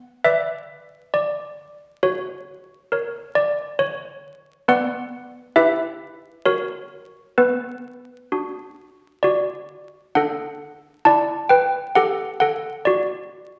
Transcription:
0.00 0.21 B3 medium
0.00 0.20 F#5 medium
0.24 1.99 B4 soft
0.24 1.12 D5 soft
0.24 1.11 E5 medium
1.14 1.99 D5 medium
2.03 2.88 F#4 medium
2.03 2.92 C#5 medium
2.92 4.65 A#4 soft
2.92 3.78 C#5 soft
3.35 3.77 D5 medium
3.79 4.65 C#5 medium
4.68 5.54 B3 medium
4.68 5.52 B4 soft
4.68 5.53 D5 soft
4.68 5.53 F#5 medium
5.56 6.43 E4 medium
5.56 6.42 G4 soft
5.56 6.42 B4 soft
5.56 6.42 E5 medium
6.45 7.35 F#4 medium
6.45 7.34 A#4 soft
6.45 7.34 C#5 medium
7.38 8.28 B3 medium
7.38 9.19 B4 medium
8.32 10.12 D4 soft
8.32 9.23 F#4 soft
9.23 10.12 F#4 medium
9.23 10.11 D5 medium
10.15 10.87 D4 medium
10.15 11.02 A4 medium
10.15 11.02 F#5 medium
11.05 11.77 E4 medium
11.05 11.48 D5 medium
11.05 11.48 A5 medium
11.49 11.92 B4 medium
11.49 11.93 G5 medium
11.95 12.68 G4 medium
11.95 12.38 A4 medium
11.95 12.38 F#5 medium
12.40 12.83 A4 medium
12.40 12.83 F#5 medium
12.85 13.59 F#4 medium
12.85 13.59 D5 medium

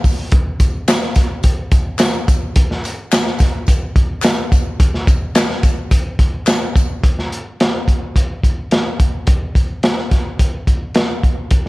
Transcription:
0.04 kick medium
0.04 open hi-hat medium
0.04 tambourine medium
0.32 kick loud
0.32 closed hi-hat medium
0.60 kick loud
0.60 closed hi-hat medium
0.60 tambourine soft
0.88 snare loud
0.88 clap loud
0.88 closed hi-hat medium
0.88 tambourine loud
1.03 snare soft
1.15 kick medium
1.15 snare soft
1.15 closed hi-hat medium
1.15 tambourine medium
1.43 kick medium
1.43 closed hi-hat medium
1.43 tambourine soft
1.72 kick medium
1.72 closed hi-hat medium
1.72 tambourine soft
1.99 snare loud
1.99 clap medium
1.99 closed hi-hat medium
1.99 tambourine medium
2.28 kick loud
2.28 closed hi-hat medium
2.28 tambourine medium
2.56 kick loud
2.56 closed hi-hat medium
2.71 snare soft
2.84 closed hi-hat medium
2.84 tambourine soft
3.12 snare loud
3.12 clap loud
3.12 closed hi-hat loud
3.12 tambourine loud
3.27 snare soft
3.39 kick loud
3.39 snare soft
3.39 closed hi-hat medium
3.39 tambourine medium
3.67 kick medium
3.67 closed hi-hat medium
3.67 tambourine medium
3.96 kick medium
3.96 closed hi-hat medium
4.22 snare loud
4.22 clap medium
4.22 closed hi-hat medium
4.22 tambourine medium
4.52 kick loud
4.52 closed hi-hat medium
4.52 tambourine medium
4.80 kick loud
4.80 closed hi-hat medium
4.80 tambourine soft
4.94 snare soft
5.07 kick loud
5.07 closed hi-hat medium
5.07 tambourine medium
5.35 snare loud
5.35 clap loud
5.35 closed hi-hat medium
5.35 tambourine loud
5.50 snare soft
5.63 kick medium
5.63 closed hi-hat medium
5.63 tambourine medium
5.91 kick medium
5.91 closed hi-hat medium
5.91 tambourine medium
6.19 kick medium
6.19 closed hi-hat medium
6.47 snare loud
6.47 clap medium
6.47 closed hi-hat medium
6.47 tambourine medium
6.76 kick loud
6.76 closed hi-hat medium
6.76 tambourine medium
7.04 kick loud
7.04 closed hi-hat medium
7.19 snare soft
7.32 closed hi-hat medium
7.60 snare loud
7.60 closed hi-hat medium
7.88 kick medium
7.88 closed hi-hat medium
8.16 kick medium
8.16 closed hi-hat medium
8.44 kick medium
8.44 closed hi-hat medium
8.71 snare loud
8.71 closed hi-hat medium
9.00 kick medium
9.00 closed hi-hat medium
9.27 kick loud
9.27 closed hi-hat medium
9.55 kick medium
9.55 closed hi-hat medium
9.83 snare loud
9.83 closed hi-hat medium
9.98 snare soft
10.11 kick medium
10.11 snare soft
10.11 closed hi-hat medium
10.39 kick medium
10.39 closed hi-hat medium
10.67 kick medium
10.67 closed hi-hat medium
10.95 snare loud
10.95 closed hi-hat medium
11.23 kick medium
11.23 closed hi-hat medium
11.51 kick loud
11.51 closed hi-hat medium

